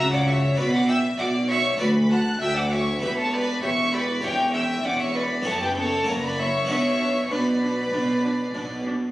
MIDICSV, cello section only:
0, 0, Header, 1, 2, 480
1, 0, Start_track
1, 0, Key_signature, 2, "minor"
1, 0, Tempo, 609756
1, 1418, Time_signature, 4, 2, 24, 8
1, 4299, Tempo, 618557
1, 7134, End_track
2, 0, Start_track
2, 0, Title_t, "Cello section"
2, 0, Program_c, 0, 48
2, 0, Note_on_c, 0, 49, 99
2, 403, Note_off_c, 0, 49, 0
2, 462, Note_on_c, 0, 47, 98
2, 883, Note_off_c, 0, 47, 0
2, 940, Note_on_c, 0, 47, 85
2, 1362, Note_off_c, 0, 47, 0
2, 1418, Note_on_c, 0, 38, 99
2, 1841, Note_off_c, 0, 38, 0
2, 1900, Note_on_c, 0, 38, 94
2, 2321, Note_off_c, 0, 38, 0
2, 2377, Note_on_c, 0, 40, 90
2, 2800, Note_off_c, 0, 40, 0
2, 2855, Note_on_c, 0, 40, 86
2, 3279, Note_off_c, 0, 40, 0
2, 3335, Note_on_c, 0, 40, 96
2, 3759, Note_off_c, 0, 40, 0
2, 3818, Note_on_c, 0, 40, 86
2, 4242, Note_off_c, 0, 40, 0
2, 4297, Note_on_c, 0, 42, 88
2, 4718, Note_off_c, 0, 42, 0
2, 4774, Note_on_c, 0, 42, 76
2, 5198, Note_off_c, 0, 42, 0
2, 5253, Note_on_c, 0, 47, 79
2, 5679, Note_off_c, 0, 47, 0
2, 5737, Note_on_c, 0, 47, 79
2, 6161, Note_off_c, 0, 47, 0
2, 6215, Note_on_c, 0, 47, 79
2, 6640, Note_off_c, 0, 47, 0
2, 6697, Note_on_c, 0, 47, 69
2, 7121, Note_off_c, 0, 47, 0
2, 7134, End_track
0, 0, End_of_file